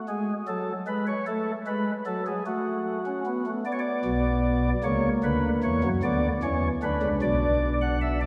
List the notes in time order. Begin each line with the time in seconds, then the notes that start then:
0.08 G#3 G#4
0.48 F#3 A4
0.87 G#3 B4
1.07 C#5
1.27 A3 A4
1.67 G#3 B4
2.06 F#3 A4
2.26 G#4
2.46 A3 F#4
3.06 C#4
3.26 B3
3.46 A3
3.66 B3 D5
3.73 C#5
3.79 D5
4.05 B1 B2
4.84 C#2 C#3 A#3 C#5
5.24 D2 D3 B4
5.63 E2 E3 C#5
5.84 F#2 F#3
6.03 D2 D3 B3 D5
6.43 E2 E3 C#4 C#5
6.83 D2 D3 D4 B4
7.03 C#2 C#3
7.22 B1 B2 D5
7.81 F#5
8.01 E5
8.21 D5